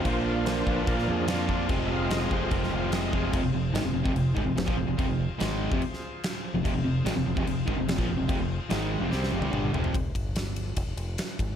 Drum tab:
CC |x---x---x---x---|x---x---x---x---|x---x---x---x---|x---x---x---x---|
RD |----------------|----------------|----------------|----------------|
SD |----o----o--o---|----o----o--o---|----o-------o---|----o----o--o---|
T1 |----------------|----------------|----------------|----------------|
T2 |----------------|----------------|----------------|----------------|
FT |----------------|----------------|----------------|----------------|
BD |o-----o-o-----o-|o-----o-o-----o-|o------o--o--o--|o------o--------|

CC |x---x---x---x---|x---x-----------|----------------|
RD |----------------|----------------|x-x-x-x-x-x-x-x-|
SD |----o-------o---|----o---oo------|----o-------o---|
T1 |----------------|-----------o----|----------------|
T2 |----------------|------------o---|----------------|
FT |----------------|--------------oo|----------------|
BD |o------o--o--o--|o---------------|o-o-----o-----o-|